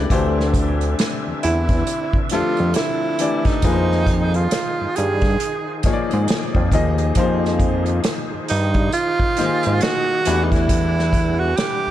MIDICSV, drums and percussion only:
0, 0, Header, 1, 2, 480
1, 0, Start_track
1, 0, Tempo, 882353
1, 55, Time_signature, 4, 2, 24, 8
1, 6477, End_track
2, 0, Start_track
2, 0, Title_t, "Drums"
2, 56, Note_on_c, 9, 36, 95
2, 58, Note_on_c, 9, 42, 79
2, 110, Note_off_c, 9, 36, 0
2, 112, Note_off_c, 9, 42, 0
2, 218, Note_on_c, 9, 38, 33
2, 273, Note_off_c, 9, 38, 0
2, 292, Note_on_c, 9, 36, 90
2, 294, Note_on_c, 9, 42, 62
2, 347, Note_off_c, 9, 36, 0
2, 349, Note_off_c, 9, 42, 0
2, 440, Note_on_c, 9, 42, 37
2, 495, Note_off_c, 9, 42, 0
2, 537, Note_on_c, 9, 42, 93
2, 543, Note_on_c, 9, 38, 114
2, 592, Note_off_c, 9, 42, 0
2, 597, Note_off_c, 9, 38, 0
2, 778, Note_on_c, 9, 42, 63
2, 832, Note_off_c, 9, 42, 0
2, 918, Note_on_c, 9, 42, 36
2, 919, Note_on_c, 9, 36, 86
2, 930, Note_on_c, 9, 38, 36
2, 972, Note_off_c, 9, 42, 0
2, 974, Note_off_c, 9, 36, 0
2, 984, Note_off_c, 9, 38, 0
2, 1016, Note_on_c, 9, 42, 70
2, 1070, Note_off_c, 9, 42, 0
2, 1161, Note_on_c, 9, 36, 87
2, 1216, Note_off_c, 9, 36, 0
2, 1248, Note_on_c, 9, 42, 63
2, 1266, Note_on_c, 9, 38, 34
2, 1303, Note_off_c, 9, 42, 0
2, 1321, Note_off_c, 9, 38, 0
2, 1397, Note_on_c, 9, 42, 36
2, 1451, Note_off_c, 9, 42, 0
2, 1490, Note_on_c, 9, 42, 81
2, 1503, Note_on_c, 9, 38, 112
2, 1544, Note_off_c, 9, 42, 0
2, 1558, Note_off_c, 9, 38, 0
2, 1734, Note_on_c, 9, 42, 74
2, 1788, Note_off_c, 9, 42, 0
2, 1876, Note_on_c, 9, 42, 36
2, 1878, Note_on_c, 9, 36, 91
2, 1890, Note_on_c, 9, 38, 32
2, 1930, Note_off_c, 9, 42, 0
2, 1932, Note_off_c, 9, 36, 0
2, 1944, Note_off_c, 9, 38, 0
2, 1971, Note_on_c, 9, 42, 73
2, 1974, Note_on_c, 9, 36, 92
2, 2025, Note_off_c, 9, 42, 0
2, 2028, Note_off_c, 9, 36, 0
2, 2132, Note_on_c, 9, 38, 30
2, 2186, Note_off_c, 9, 38, 0
2, 2212, Note_on_c, 9, 36, 96
2, 2214, Note_on_c, 9, 42, 64
2, 2266, Note_off_c, 9, 36, 0
2, 2268, Note_off_c, 9, 42, 0
2, 2361, Note_on_c, 9, 42, 38
2, 2416, Note_off_c, 9, 42, 0
2, 2454, Note_on_c, 9, 42, 95
2, 2460, Note_on_c, 9, 38, 125
2, 2509, Note_off_c, 9, 42, 0
2, 2514, Note_off_c, 9, 38, 0
2, 2697, Note_on_c, 9, 42, 69
2, 2752, Note_off_c, 9, 42, 0
2, 2837, Note_on_c, 9, 42, 33
2, 2840, Note_on_c, 9, 36, 85
2, 2849, Note_on_c, 9, 38, 40
2, 2891, Note_off_c, 9, 42, 0
2, 2894, Note_off_c, 9, 36, 0
2, 2903, Note_off_c, 9, 38, 0
2, 2937, Note_on_c, 9, 42, 71
2, 2992, Note_off_c, 9, 42, 0
2, 3172, Note_on_c, 9, 42, 74
2, 3177, Note_on_c, 9, 36, 95
2, 3189, Note_on_c, 9, 38, 35
2, 3226, Note_off_c, 9, 42, 0
2, 3231, Note_off_c, 9, 36, 0
2, 3244, Note_off_c, 9, 38, 0
2, 3323, Note_on_c, 9, 42, 36
2, 3377, Note_off_c, 9, 42, 0
2, 3416, Note_on_c, 9, 42, 77
2, 3430, Note_on_c, 9, 38, 111
2, 3470, Note_off_c, 9, 42, 0
2, 3484, Note_off_c, 9, 38, 0
2, 3562, Note_on_c, 9, 36, 90
2, 3616, Note_off_c, 9, 36, 0
2, 3653, Note_on_c, 9, 36, 103
2, 3656, Note_on_c, 9, 42, 73
2, 3708, Note_off_c, 9, 36, 0
2, 3710, Note_off_c, 9, 42, 0
2, 3798, Note_on_c, 9, 42, 35
2, 3852, Note_off_c, 9, 42, 0
2, 3890, Note_on_c, 9, 42, 77
2, 3894, Note_on_c, 9, 36, 91
2, 3944, Note_off_c, 9, 42, 0
2, 3949, Note_off_c, 9, 36, 0
2, 4053, Note_on_c, 9, 38, 32
2, 4108, Note_off_c, 9, 38, 0
2, 4132, Note_on_c, 9, 36, 94
2, 4132, Note_on_c, 9, 42, 60
2, 4186, Note_off_c, 9, 36, 0
2, 4187, Note_off_c, 9, 42, 0
2, 4275, Note_on_c, 9, 42, 38
2, 4329, Note_off_c, 9, 42, 0
2, 4372, Note_on_c, 9, 42, 103
2, 4378, Note_on_c, 9, 38, 123
2, 4426, Note_off_c, 9, 42, 0
2, 4432, Note_off_c, 9, 38, 0
2, 4615, Note_on_c, 9, 42, 63
2, 4670, Note_off_c, 9, 42, 0
2, 4755, Note_on_c, 9, 42, 34
2, 4759, Note_on_c, 9, 36, 89
2, 4810, Note_off_c, 9, 42, 0
2, 4814, Note_off_c, 9, 36, 0
2, 4855, Note_on_c, 9, 42, 71
2, 4909, Note_off_c, 9, 42, 0
2, 5003, Note_on_c, 9, 36, 86
2, 5057, Note_off_c, 9, 36, 0
2, 5095, Note_on_c, 9, 42, 68
2, 5113, Note_on_c, 9, 38, 34
2, 5150, Note_off_c, 9, 42, 0
2, 5167, Note_off_c, 9, 38, 0
2, 5238, Note_on_c, 9, 42, 37
2, 5292, Note_off_c, 9, 42, 0
2, 5335, Note_on_c, 9, 42, 80
2, 5348, Note_on_c, 9, 38, 122
2, 5389, Note_off_c, 9, 42, 0
2, 5403, Note_off_c, 9, 38, 0
2, 5578, Note_on_c, 9, 42, 78
2, 5632, Note_off_c, 9, 42, 0
2, 5722, Note_on_c, 9, 36, 83
2, 5722, Note_on_c, 9, 42, 39
2, 5736, Note_on_c, 9, 38, 35
2, 5776, Note_off_c, 9, 36, 0
2, 5777, Note_off_c, 9, 42, 0
2, 5791, Note_off_c, 9, 38, 0
2, 5816, Note_on_c, 9, 36, 95
2, 5816, Note_on_c, 9, 42, 78
2, 5871, Note_off_c, 9, 36, 0
2, 5871, Note_off_c, 9, 42, 0
2, 5979, Note_on_c, 9, 38, 30
2, 6033, Note_off_c, 9, 38, 0
2, 6054, Note_on_c, 9, 36, 96
2, 6057, Note_on_c, 9, 42, 61
2, 6108, Note_off_c, 9, 36, 0
2, 6112, Note_off_c, 9, 42, 0
2, 6297, Note_on_c, 9, 42, 96
2, 6302, Note_on_c, 9, 38, 117
2, 6351, Note_off_c, 9, 42, 0
2, 6356, Note_off_c, 9, 38, 0
2, 6477, End_track
0, 0, End_of_file